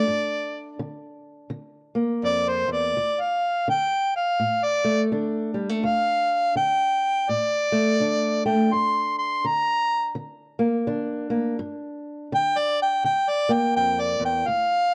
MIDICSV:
0, 0, Header, 1, 3, 480
1, 0, Start_track
1, 0, Tempo, 721154
1, 40, Time_signature, 4, 2, 24, 8
1, 9945, End_track
2, 0, Start_track
2, 0, Title_t, "Harmonica"
2, 0, Program_c, 0, 22
2, 0, Note_on_c, 0, 74, 93
2, 500, Note_off_c, 0, 74, 0
2, 1495, Note_on_c, 0, 74, 89
2, 1654, Note_on_c, 0, 72, 77
2, 1664, Note_off_c, 0, 74, 0
2, 1804, Note_off_c, 0, 72, 0
2, 1810, Note_on_c, 0, 74, 73
2, 2141, Note_on_c, 0, 77, 75
2, 2151, Note_off_c, 0, 74, 0
2, 2443, Note_off_c, 0, 77, 0
2, 2460, Note_on_c, 0, 79, 80
2, 2763, Note_off_c, 0, 79, 0
2, 2769, Note_on_c, 0, 77, 86
2, 3087, Note_on_c, 0, 74, 102
2, 3097, Note_off_c, 0, 77, 0
2, 3336, Note_off_c, 0, 74, 0
2, 3895, Note_on_c, 0, 77, 99
2, 4356, Note_off_c, 0, 77, 0
2, 4372, Note_on_c, 0, 79, 90
2, 4857, Note_on_c, 0, 74, 85
2, 4867, Note_off_c, 0, 79, 0
2, 5600, Note_off_c, 0, 74, 0
2, 5629, Note_on_c, 0, 79, 69
2, 5812, Note_on_c, 0, 84, 81
2, 5822, Note_off_c, 0, 79, 0
2, 6092, Note_off_c, 0, 84, 0
2, 6111, Note_on_c, 0, 84, 77
2, 6301, Note_on_c, 0, 82, 95
2, 6311, Note_off_c, 0, 84, 0
2, 6758, Note_off_c, 0, 82, 0
2, 8217, Note_on_c, 0, 79, 96
2, 8375, Note_on_c, 0, 74, 95
2, 8385, Note_off_c, 0, 79, 0
2, 8523, Note_off_c, 0, 74, 0
2, 8537, Note_on_c, 0, 79, 78
2, 8684, Note_off_c, 0, 79, 0
2, 8687, Note_on_c, 0, 79, 93
2, 8847, Note_on_c, 0, 74, 88
2, 8857, Note_off_c, 0, 79, 0
2, 9005, Note_on_c, 0, 79, 86
2, 9015, Note_off_c, 0, 74, 0
2, 9157, Note_off_c, 0, 79, 0
2, 9162, Note_on_c, 0, 79, 94
2, 9323, Note_on_c, 0, 74, 84
2, 9333, Note_off_c, 0, 79, 0
2, 9476, Note_off_c, 0, 74, 0
2, 9487, Note_on_c, 0, 79, 82
2, 9637, Note_on_c, 0, 77, 112
2, 9647, Note_off_c, 0, 79, 0
2, 9945, Note_off_c, 0, 77, 0
2, 9945, End_track
3, 0, Start_track
3, 0, Title_t, "Steel-string acoustic guitar"
3, 0, Program_c, 1, 25
3, 0, Note_on_c, 1, 62, 60
3, 51, Note_on_c, 1, 43, 72
3, 489, Note_off_c, 1, 43, 0
3, 529, Note_on_c, 1, 50, 63
3, 968, Note_off_c, 1, 50, 0
3, 998, Note_on_c, 1, 50, 64
3, 1298, Note_on_c, 1, 58, 62
3, 1443, Note_off_c, 1, 50, 0
3, 1486, Note_on_c, 1, 41, 58
3, 1776, Note_off_c, 1, 41, 0
3, 1783, Note_on_c, 1, 40, 56
3, 1803, Note_off_c, 1, 62, 0
3, 1942, Note_off_c, 1, 58, 0
3, 1967, Note_off_c, 1, 40, 0
3, 1976, Note_on_c, 1, 38, 73
3, 2413, Note_off_c, 1, 38, 0
3, 2448, Note_on_c, 1, 50, 66
3, 2889, Note_off_c, 1, 50, 0
3, 2926, Note_on_c, 1, 45, 61
3, 3225, Note_on_c, 1, 57, 58
3, 3368, Note_off_c, 1, 45, 0
3, 3407, Note_on_c, 1, 50, 63
3, 3410, Note_on_c, 1, 62, 60
3, 3686, Note_off_c, 1, 57, 0
3, 3688, Note_on_c, 1, 55, 56
3, 3790, Note_off_c, 1, 55, 0
3, 3790, Note_on_c, 1, 57, 44
3, 3848, Note_off_c, 1, 50, 0
3, 3884, Note_off_c, 1, 57, 0
3, 3884, Note_on_c, 1, 38, 80
3, 4327, Note_off_c, 1, 38, 0
3, 4364, Note_on_c, 1, 50, 57
3, 4807, Note_off_c, 1, 50, 0
3, 4853, Note_on_c, 1, 45, 61
3, 5140, Note_on_c, 1, 57, 60
3, 5291, Note_off_c, 1, 45, 0
3, 5326, Note_on_c, 1, 50, 63
3, 5327, Note_off_c, 1, 62, 0
3, 5329, Note_on_c, 1, 62, 54
3, 5618, Note_off_c, 1, 57, 0
3, 5628, Note_on_c, 1, 57, 58
3, 5767, Note_off_c, 1, 50, 0
3, 5788, Note_off_c, 1, 57, 0
3, 5812, Note_on_c, 1, 43, 80
3, 6250, Note_off_c, 1, 43, 0
3, 6286, Note_on_c, 1, 50, 63
3, 6727, Note_off_c, 1, 50, 0
3, 6757, Note_on_c, 1, 50, 62
3, 7050, Note_on_c, 1, 58, 63
3, 7202, Note_off_c, 1, 50, 0
3, 7234, Note_off_c, 1, 62, 0
3, 7235, Note_on_c, 1, 50, 64
3, 7237, Note_on_c, 1, 62, 64
3, 7513, Note_off_c, 1, 58, 0
3, 7521, Note_on_c, 1, 58, 56
3, 7681, Note_off_c, 1, 50, 0
3, 7693, Note_off_c, 1, 58, 0
3, 7715, Note_on_c, 1, 43, 79
3, 8160, Note_off_c, 1, 43, 0
3, 8201, Note_on_c, 1, 50, 65
3, 8642, Note_off_c, 1, 50, 0
3, 8682, Note_on_c, 1, 50, 61
3, 8979, Note_on_c, 1, 58, 59
3, 9123, Note_off_c, 1, 50, 0
3, 9165, Note_on_c, 1, 41, 65
3, 9447, Note_off_c, 1, 41, 0
3, 9450, Note_on_c, 1, 40, 66
3, 9470, Note_off_c, 1, 62, 0
3, 9619, Note_off_c, 1, 58, 0
3, 9635, Note_off_c, 1, 40, 0
3, 9637, Note_on_c, 1, 38, 70
3, 9945, Note_off_c, 1, 38, 0
3, 9945, End_track
0, 0, End_of_file